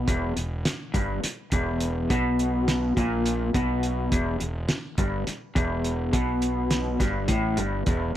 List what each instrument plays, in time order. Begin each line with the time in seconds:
0.08 fingered electric bass E1, clean electric guitar E2, kick, closed hi-hat
0.36 fingered electric bass E1, clean electric guitar E2, closed hi-hat
0.65 snare, closed hi-hat
0.94 fingered electric bass G1, clean electric guitar G2, kick, closed hi-hat
1.24 muted clean electric guitar stroke, muted fingered electric bass stroke, snare, closed hi-hat
1.52 fingered electric bass E1, clean electric guitar E2, kick, closed hi-hat
1.80 closed hi-hat
2.10 fingered electric bass B1, clean electric guitar B2, kick, closed hi-hat
2.39 closed hi-hat
2.68 snare, closed hi-hat
2.97 fingered electric bass A#1, clean electric guitar A#2, kick, closed hi-hat
3.26 closed hi-hat
3.54 fingered electric bass B1, clean electric guitar B2, kick, closed hi-hat
3.83 closed hi-hat
4.12 fingered electric bass E1, clean electric guitar E2, kick, closed hi-hat
4.40 fingered electric bass E1, clean electric guitar E2, closed hi-hat
4.69 snare, closed hi-hat
4.98 fingered electric bass G1, clean electric guitar G2, kick, closed hi-hat
5.27 muted clean electric guitar stroke, muted fingered electric bass stroke, snare, closed hi-hat
5.55 fingered electric bass E1, clean electric guitar E2, kick, closed hi-hat
5.84 closed hi-hat
6.13 fingered electric bass B1, clean electric guitar B2, kick, closed hi-hat
6.42 closed hi-hat
6.71 snare, closed hi-hat
7.00 fingered electric bass G1, clean electric guitar G2, kick, snare, closed hi-hat
7.28 fingered electric bass A1, clean electric guitar A2, kick, closed hi-hat
7.57 fingered electric bass G1, clean electric guitar G2, closed hi-hat
7.86 fingered electric bass E1, clean electric guitar E2, kick, closed hi-hat